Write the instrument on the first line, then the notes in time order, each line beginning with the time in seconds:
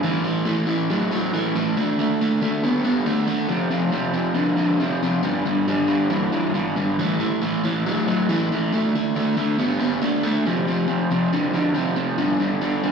overdriven electric guitar
0.03 A2 E3
0.23 A2 E3
0.46 A2 E3
0.67 A2 E3
0.90 A2 F#3
1.12 A2 F#3
1.34 A2 E3
1.55 A2 E3
1.77 D3 A3
1.99 D3 A3
2.21 D3 A3
2.42 D3 A3
2.63 D3 B3
2.85 D3 B3
3.06 D3 A3
3.27 D3 A3
3.49 F2 C3
3.71 F2 C3
3.92 F2 C3
4.14 F2 C3
4.35 F2 D3
4.57 F2 D3
4.80 F2 C3
5.03 F2 C3
5.23 G2 D3
5.45 G2 D3
5.68 G2 D3
5.87 G2 D3
6.10 G2 E3
6.32 G2 E3
6.54 G2 D3
6.76 G2 D3
6.99 A2 E3
7.20 A2 E3
7.42 A2 E3
7.64 A2 E3
7.86 A2 F#3
8.08 A2 F#3
8.29 A2 E3
8.52 A2 E3
8.73 D3 A3
8.95 D3 A3
9.16 D3 A3
9.37 D3 A3
9.59 D3 B3
9.80 D3 B3
10.02 D3 A3
10.23 D3 A3
10.46 F2 C3
10.67 F2 C3
10.88 F2 C3
11.11 F2 C3
11.33 F2 D3
11.54 F2 D3
11.74 F2 C3
11.96 F2 C3
12.18 G2 D3
12.40 G2 D3
12.61 G2 D3
12.83 G2 D3